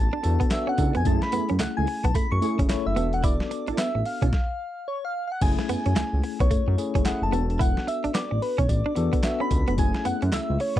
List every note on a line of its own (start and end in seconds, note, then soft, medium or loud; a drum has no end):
0.00 0.23 B3 medium
0.00 0.23 D4 medium
0.00 0.24 F#4 medium
0.00 0.24 A4 medium
0.00 0.54 A5 loud
0.13 0.20 D4 medium
0.23 0.38 E2 loud
0.23 0.44 B3 medium
0.23 0.44 D4 medium
0.23 0.44 F#4 medium
0.23 0.44 A4 medium
0.23 muted clean electric guitar stroke medium
0.23 closed hi-hat medium
0.23 tambourine medium
0.40 0.47 B3 medium
0.40 kick loud
0.40 closed hi-hat medium
0.51 0.89 B3 medium
0.51 0.89 D4 medium
0.51 0.90 F#4 medium
0.51 0.90 A4 medium
0.51 0.70 E5 loud
0.51 snare loud
0.51 clap medium
0.51 closed hi-hat medium
0.51 tambourine medium
0.67 0.74 C#4 medium
0.67 0.98 F#5 loud
0.78 0.91 C#2 loud
0.78 0.94 D4 medium
0.78 0.94 E4 medium
0.78 0.94 A4 medium
0.78 muted clean electric guitar stroke soft
0.78 kick medium
0.78 closed hi-hat medium
0.78 tambourine medium
0.95 1.04 F1 medium
0.95 1.01 B3 medium
0.95 1.06 G#5 loud
0.95 closed hi-hat medium
1.05 1.19 F#1 loud
1.05 1.80 A3 medium
1.05 1.21 A3 medium
1.05 1.80 C#4 medium
1.05 1.21 E4 medium
1.05 1.80 E4 medium
1.05 1.21 G#4 loud
1.05 1.80 G#4 medium
1.05 1.24 A5 loud
1.05 kick loud
1.05 closed hi-hat medium
1.05 tambourine medium
1.22 1.50 B5 loud
1.22 muted clean electric guitar stroke soft
1.22 snare medium
1.32 1.40 F#2 medium
1.32 1.48 A3 medium
1.32 1.43 B3 medium
1.32 1.49 E4 medium
1.32 1.49 G#4 medium
1.32 closed hi-hat medium
1.32 tambourine medium
1.49 1.58 F#2 loud
1.49 1.56 C#4 medium
1.49 closed hi-hat medium
1.59 1.67 C#2 medium
1.59 1.71 A3 medium
1.59 1.68 F#5 loud
1.59 snare loud
1.59 clap loud
1.59 closed hi-hat medium
1.59 tambourine loud
1.77 1.86 C#2 medium
1.77 1.87 A3 medium
1.77 1.87 E4 medium
1.77 1.87 G#4 medium
1.77 2.06 G#5 loud
1.87 muted clean electric guitar stroke soft
1.87 open hi-hat medium
2.04 2.12 B1 medium
2.04 2.11 B3 medium
2.04 2.16 A5 loud
2.04 kick loud
2.04 closed hi-hat medium
2.15 2.22 F#2 soft
2.15 2.26 A3 medium
2.15 2.33 B5 loud
2.15 kick medium
2.15 closed hi-hat medium
2.15 tambourine medium
2.32 2.40 F#2 loud
2.32 2.59 C#6 loud
2.32 muted clean electric guitar stroke medium
2.41 2.57 A3 medium
2.41 2.62 A3 medium
2.41 2.62 C#4 medium
2.41 2.58 E4 medium
2.41 2.62 E4 medium
2.41 2.58 G#4 medium
2.41 2.62 G#4 medium
2.41 closed hi-hat medium
2.41 tambourine medium
2.59 2.67 F#1 loud
2.59 2.66 C#4 medium
2.59 kick loud
2.59 closed hi-hat medium
2.69 2.76 F#1 medium
2.69 2.96 A3 medium
2.69 2.96 C#4 medium
2.69 2.97 E4 medium
2.69 2.96 A4 medium
2.69 2.88 C#5 loud
2.69 snare loud
2.69 clap medium
2.69 closed hi-hat medium
2.69 tambourine medium
2.86 2.94 F#1 loud
2.86 3.13 E5 loud
2.96 3.39 E1 loud
2.96 3.85 B3 medium
2.96 3.07 B3 medium
2.96 3.85 D4 medium
2.96 3.85 F#4 medium
2.96 3.85 A4 medium
2.96 closed hi-hat medium
2.96 tambourine medium
3.13 3.23 F#5 loud
3.13 closed hi-hat medium
3.24 3.34 E4 medium
3.24 3.80 D5 loud
3.24 kick loud
3.24 closed hi-hat medium
3.24 tambourine medium
3.40 snare medium
3.51 muted clean electric guitar stroke soft
3.51 closed hi-hat medium
3.51 tambourine medium
3.67 3.72 A1 soft
3.67 3.77 D4 medium
3.67 3.74 D4 medium
3.67 3.78 E4 medium
3.67 3.78 A4 medium
3.67 closed hi-hat medium
3.78 3.89 B3 medium
3.78 4.08 E5 loud
3.78 snare loud
3.78 clap medium
3.78 closed hi-hat medium
3.78 tambourine loud
3.95 4.03 A1 medium
3.95 muted clean electric guitar stroke soft
4.05 4.87 F5 medium
4.05 open hi-hat medium
4.21 4.30 B1 medium
4.21 4.29 C#4 medium
4.21 4.32 D4 medium
4.21 4.32 E4 medium
4.21 4.32 A4 medium
4.21 kick loud
4.21 closed hi-hat medium
4.33 kick loud
4.33 snare medium
4.88 5.06 C#5 loud
5.05 5.28 F5 loud
5.28 5.33 F5 medium
5.32 5.44 F#5 medium
5.41 5.55 F#1 loud
5.41 6.16 A3 medium
5.41 6.16 C#4 medium
5.41 6.16 E4 medium
5.41 6.16 G#4 medium
5.41 6.42 G#5 loud
5.41 kick loud
5.41 closed hi-hat medium
5.41 crash loud
5.41 tambourine medium
5.59 muted clean electric guitar stroke soft
5.59 snare medium
5.69 5.76 F#2 medium
5.69 5.80 B3 medium
5.69 closed hi-hat medium
5.69 tambourine medium
5.86 5.94 F#2 medium
5.86 5.92 C#4 medium
5.86 closed hi-hat medium
5.96 6.04 C#2 medium
5.96 6.07 A3 medium
5.96 snare loud
5.96 clap medium
5.96 closed hi-hat medium
5.96 tambourine loud
6.13 6.21 C#2 medium
6.24 muted clean electric guitar stroke soft
6.24 open hi-hat medium
6.40 6.48 B1 medium
6.40 6.47 B3 medium
6.40 7.07 C#5 loud
6.40 kick loud
6.40 closed hi-hat medium
6.51 6.58 F#2 soft
6.51 6.61 A3 medium
6.51 kick medium
6.51 closed hi-hat medium
6.51 tambourine medium
6.68 6.76 F#2 loud
6.68 muted clean electric guitar stroke soft
6.78 6.98 A3 medium
6.78 6.98 C#4 medium
6.78 6.99 E4 medium
6.78 6.99 G#4 medium
6.78 closed hi-hat medium
6.78 tambourine medium
6.95 7.03 F#1 medium
6.95 7.02 C#4 medium
6.95 kick medium
6.95 closed hi-hat medium
7.05 7.12 F#1 soft
7.05 7.33 A3 medium
7.05 7.33 C#4 medium
7.05 7.33 E4 medium
7.05 7.33 G#4 medium
7.05 7.25 F#5 loud
7.05 snare loud
7.05 clap medium
7.05 closed hi-hat medium
7.05 tambourine medium
7.22 7.30 F#1 medium
7.22 7.50 A5 loud
7.32 7.75 E1 loud
7.32 8.21 B3 medium
7.32 7.43 B3 medium
7.32 8.21 D4 medium
7.32 8.21 F#4 medium
7.32 8.22 A4 medium
7.32 closed hi-hat medium
7.32 tambourine medium
7.50 7.63 A5 loud
7.50 closed hi-hat medium
7.59 7.70 E4 medium
7.59 7.90 F#5 loud
7.59 kick loud
7.59 closed hi-hat medium
7.59 tambourine medium
7.77 snare medium
7.87 8.16 E5 medium
7.87 muted clean electric guitar stroke soft
7.87 closed hi-hat medium
7.87 tambourine medium
8.04 8.09 A1 soft
8.04 8.11 D4 medium
8.04 closed hi-hat medium
8.14 8.25 B3 medium
8.14 8.44 D5 loud
8.14 snare loud
8.14 clap loud
8.14 closed hi-hat medium
8.14 tambourine medium
8.31 8.40 A1 medium
8.31 muted clean electric guitar stroke soft
8.42 8.61 B4 medium
8.42 open hi-hat medium
8.58 8.67 B1 medium
8.58 8.65 C#4 medium
8.58 8.69 C#5 medium
8.58 kick loud
8.58 closed hi-hat medium
8.69 8.82 A1 loud
8.69 9.26 D5 loud
8.69 kick medium
8.69 closed hi-hat medium
8.69 tambourine medium
8.86 8.92 D4 medium
8.96 9.10 E2 loud
8.96 9.17 B3 medium
8.96 9.17 D4 medium
8.96 9.17 F#4 medium
8.96 9.17 A4 medium
8.96 muted clean electric guitar stroke medium
8.96 closed hi-hat medium
8.96 tambourine medium
9.13 9.19 B3 medium
9.13 kick loud
9.13 closed hi-hat medium
9.23 9.62 B3 medium
9.23 9.62 D4 medium
9.23 9.62 F#4 medium
9.23 9.62 A4 medium
9.23 9.43 E5 loud
9.23 snare loud
9.23 clap medium
9.23 closed hi-hat medium
9.23 tambourine medium
9.40 9.47 C#4 medium
9.40 9.68 B5 loud
9.51 9.64 C#2 loud
9.51 muted clean electric guitar stroke soft
9.51 kick loud
9.51 closed hi-hat medium
9.51 tambourine medium
9.67 9.76 F1 medium
9.67 9.74 B3 medium
9.67 9.73 B5 loud
9.67 closed hi-hat medium
9.77 9.91 F#1 loud
9.77 10.52 A3 medium
9.77 10.52 C#4 medium
9.77 10.52 E4 medium
9.77 10.53 G#4 medium
9.77 10.08 G#5 loud
9.77 kick loud
9.77 closed hi-hat medium
9.77 tambourine medium
9.94 muted clean electric guitar stroke soft
9.94 snare medium
10.05 10.13 F#2 medium
10.05 10.16 B3 medium
10.05 10.36 F#5 loud
10.05 closed hi-hat medium
10.05 tambourine medium
10.22 10.31 F#2 medium
10.22 10.29 C#4 medium
10.22 closed hi-hat medium
10.32 10.40 C#2 medium
10.32 10.43 A3 medium
10.32 10.62 E5 loud
10.32 snare loud
10.32 clap medium
10.32 closed hi-hat medium
10.32 tambourine loud
10.50 10.58 C#2 loud
10.60 10.79 C#5 loud
10.60 muted clean electric guitar stroke soft
10.60 open hi-hat medium
10.76 10.80 B1 medium
10.76 kick loud